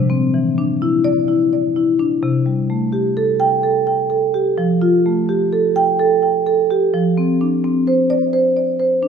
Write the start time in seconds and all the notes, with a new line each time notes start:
Already playing: C3
0.10 C4
0.34 E3
0.58 D4
0.82 E4
1.04 D5
1.28 E4
1.53 D5
1.76 E4
1.99 D4
2.22 C3
2.46 G3
2.70 A3
2.93 G4
3.17 A4
3.40 G5
3.63 A4
3.87 G5
4.10 A4
4.34 G4
4.58 F3
4.82 F4
5.06 A3
5.29 G4
5.53 A4
5.76 G5
5.99 A4
6.22 G5
6.46 A4
6.71 G4
6.94 F3
7.17 C4
7.41 D4
7.64 C4
7.87 C5
8.10 D5
8.33 C5
8.57 D5
8.80 C5
9.03 D4